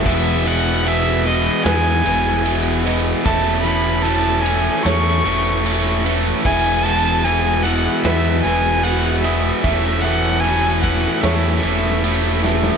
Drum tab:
CC |x---------------|----------------|x---------------|----------------|
RD |--x-x-x-x-x-x-x-|x-x-x-x-x-x-x-x-|--x-x-x-x-x-x-x-|x-x-x-x-x-x-x---|
SD |--------o--o----|--------o-------|--------o-------|--------o--o--oo|
BD |o---------------|o---------------|o---------------|o-----o---------|